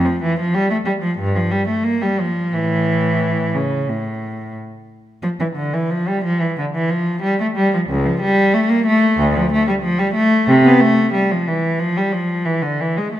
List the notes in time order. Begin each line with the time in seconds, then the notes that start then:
0.05 F3
0.23 E3
0.40 F3
0.54 G3
0.70 A3
0.85 G3
1.02 F3
1.19 G2
1.35 F3
1.51 G3
1.67 A3
1.84 A#3
2.02 G3
2.20 F3
2.53 A2 E3
3.54 C#3
3.88 A2
5.23 F3
5.40 E3
5.56 D3
5.74 E3
5.90 F3
6.08 G3
6.24 F3
6.41 E3
6.58 D3
6.75 E3
6.89 F3
7.22 G3
7.40 A3
7.56 G3
7.74 F3
7.89 C#2
8.06 F3
8.21 G3
8.54 A3
8.69 A#3
8.86 A3
9.18 D2
9.36 F3
9.52 A3
9.68 G3
9.82 F3
9.99 G3
10.14 A3
10.48 C3
10.65 B3
10.81 A3
11.13 G3
11.31 F3
11.48 E3
11.79 F3
11.97 G3
12.12 F3
12.45 E3
12.62 D3
12.81 E3
12.97 G#3
13.14 A3